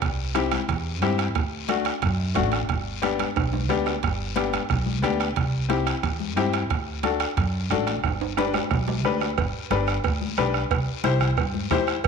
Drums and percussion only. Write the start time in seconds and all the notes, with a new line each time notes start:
0.02 bombo low, bombo rim, high conga, high timbale, long guiro
0.35 bombo rim, high conga, high timbale, short guiro
0.51 bombo rim, high conga, high timbale, short guiro
0.68 bombo low, bombo rim, high conga, high timbale, long guiro
1.02 bombo rim, high conga, high timbale, short guiro
1.18 bombo rim, high timbale, short guiro
1.35 bombo low, bombo rim, high timbale, long guiro
1.69 bombo rim, high conga, high timbale, short guiro
1.85 bombo rim, high timbale, short guiro
2.02 bombo low, bombo rim, high conga, high timbale, long guiro
2.35 bombo low, bombo rim, high conga, high timbale, low timbale, short guiro
2.52 bombo rim, high timbale, short guiro
2.69 bombo low, bombo rim, high conga, high timbale, long guiro
3.02 bombo rim, high conga, high timbale, short guiro
3.19 bombo rim, high conga, high timbale, short guiro
3.36 bombo low, bombo rim, high timbale, long guiro
3.53 high conga, high timbale
3.69 bombo rim, high conga, low timbale, short guiro
3.86 bombo rim, low timbale, short guiro
4.02 bombo low, bombo rim, high conga, high timbale, long guiro
4.36 bombo rim, high conga, high timbale, short guiro
4.53 bombo rim, high conga, high timbale, short guiro
4.69 bombo low, bombo rim, high conga, high timbale, long guiro
4.86 high conga
5.03 bombo rim, high conga, high timbale, short guiro
5.20 bombo rim, high timbale, short guiro
5.36 bombo low, bombo rim, high conga, high timbale, long guiro
5.70 bombo rim, high conga, high timbale, short guiro
5.87 bombo rim, high timbale, short guiro
6.03 bombo low, bombo rim, high conga, high timbale, long guiro
6.20 high conga
6.37 bombo rim, high conga, high timbale, low timbale, short guiro
6.53 bombo rim, high timbale, short guiro
6.70 bombo low, bombo rim, high timbale, long guiro
7.03 bombo rim, high conga, high timbale, short guiro
7.20 bombo rim, high timbale, short guiro
7.37 bombo low, bombo rim, high conga, high timbale, long guiro
7.70 bombo rim, high conga, high timbale, low timbale, short guiro
7.87 bombo rim, high timbale, short guiro
8.03 bombo low, bombo rim, high conga, high timbale, long guiro
8.21 high timbale
8.37 bombo rim, high conga, high timbale, short guiro
8.54 bombo rim, high conga, low timbale, short guiro
8.71 bombo low, bombo rim, high conga, low timbale, long guiro
8.87 high conga, low timbale
9.04 bombo rim, high conga
9.21 bombo rim, low timbale, short guiro
9.38 bombo low, bombo rim, cowbell, high conga, long guiro
9.70 bombo rim, high conga, short guiro
9.87 bombo rim, short guiro
10.04 bombo low, bombo rim, cowbell, high conga, long guiro
10.21 high conga
10.37 bombo rim, high conga, short guiro
10.54 bombo rim, short guiro
10.71 bombo low, bombo rim, cowbell, high conga, long guiro
11.04 bombo rim, high conga, short guiro
11.20 bombo rim, low conga, short guiro
11.37 bombo low, bombo rim, cowbell, high conga, long guiro
11.54 high conga
11.71 bombo low, bombo rim, high conga, low conga, low timbale, short guiro
11.87 bombo rim, short guiro
12.04 bombo low, bombo rim, cowbell, high conga, long guiro